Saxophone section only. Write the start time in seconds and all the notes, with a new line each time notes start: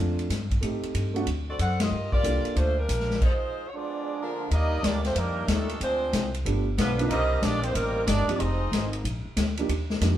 1.50 C4 F#4 A4 D5
1.61 D4 A4 C5 F#5
1.82 A#3 F4 G4 D#5
2.12 A#3 F4 G4 D5
2.57 A3 D4 F4 C5
2.78 G3 D4 F4 A#4
3.22 G#3 D#4 F4 C5
3.68 C#5
3.76 B3 F4 G#4 D5
4.22 G#3 D4 F4 A#4
4.54 A#3 G4 D5 D#5
4.85 A#3 D#4 G4 D5
5.06 A3 D4 F4 C5
5.18 G3 D4 D#4 A#4
5.50 G3 D4 D#4 A4
5.82 G#3 D4 F4 C5
6.81 G3 D4 F4 B4
7.12 C4 G4 A#4 D#5
7.44 A#3 D#4 G4 D5
7.63 A#3 D#4 G4 C5
7.74 G3 C4 D#4 A#4
8.07 A#3 D#4 G4 D5
8.36 D5 D#5
8.40 C4 F4 G#4